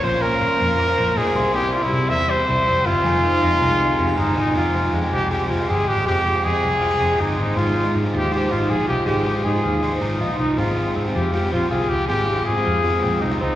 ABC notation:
X:1
M:4/4
L:1/16
Q:1/4=159
K:Fm
V:1 name="Glockenspiel"
b12- b2 c'2- | c'16 | a8 c'2 a2 b2 a2 | z16 |
z16 | z16 | z16 | z16 |
z16 |]
V:2 name="Trumpet"
c2 B8- B2 A4 | G2 F =E3 =e2 c6 F2- | F12 E2 E2 | F4 z2 G2 G2 F2 A2 G2 |
G4 A8 E2 E2 | F4 z2 G2 G2 F2 A2 G2 | G4 A4- A z3 E2 E2 | F4 z2 G2 G2 F2 A2 G2 |
G4 A8 E2 E2 |]
V:3 name="Clean electric guitar"
[B,,B,DFc]2 D2 c2 F2 B,2 c2 E F C,2 | [C,=E]2 G,2 E2 B, C G,2 E2 C2 E2 | [F,,E]2 E,2 E2 A,2 C,2 D E A,2 E2 | F,,2 C2 A,2 C4 A,2 C2 A,2 |
F,,2 C2 A,2 C2 F G A,2 C2 A,2 | A,2 E F E2 F2 c2 E2 F2 E2 | A,2 E F E2 F2 c2 E2 F2 E2 | A,2 F2 C2 F4 C2 F2 C2 |
A,2 E F C2 F4 C2 E F C2 |]
V:4 name="Overdriven electric guitar"
[B,,F,B,DFc]3 [B,DFc]3 [B,DFc]3 [B,DFc]3 [B,DFc]2 [C,G,C=E]2 | [C,G,C=E]3 [G,CE]3 [C,G,CE]3 [G,CE]3 [C,G,CE]2 [C,G,CE]2 | [F,,C,E,A,C]3 [E,A,C]3 [C,E,A,C]3 [E,A,C]3 [C,E,A,C]2 [C,E,A,C]2 | [F,,C,F,A,CG]2 [F,A,CG]3 [F,A,CG]3 [F,,C,F,A,CG]2 [F,A,CG]3 [F,A,CG]3 |
[F,,C,F,A,CG]2 [F,A,CG]3 [F,A,CG]3 [F,,C,F,A,CG]2 [F,A,CG]3 [F,A,CG]3 | [A,EFc]2 [A,EFc]3 [EFc]3 [A,EFc]2 [A,EFc]3 [EFc]3 | [A,EFc]2 [A,EFc]3 [EFc]3 [A,EFc]2 [A,EFc]3 [EFc]3 | [A,CFG]2 [A,CFG]3 [CFG]3 [A,CFG]2 [A,CFG]3 [CFG]3 |
[A,CFG]2 [A,CFG]3 [CFG]3 [A,CFG]2 [A,CFG]3 [CFG]3 |]
V:5 name="Fingered electric bass" clef=bass
B,,,4 B,,2 F,,4 B,,,2 B,,2 C,,2- | C,,4 C,2 =E,,4 C,,2 F,,,2 G,,,2 | F,,,4 F,,2 C,,4 F,,,2 G,,,2 A,,,2 | F,,,4 F,,2 C,,4 F,,,2 G,,,2 A,,,2 |
F,,,4 F,,2 C,,4 F,,,2 G,,,2 A,,,2 | A,,,4 A,,2 E,,4 A,,,2 B,,,2 C,,2 | A,,,4 A,,2 E,,4 A,,,2 B,,,2 C,,2 | A,,,4 A,,2 F,,4 B,,,2 C,,2 D,,2 |
A,,,4 A,,2 F,,4 B,,,2 C,,2 D,,2 |]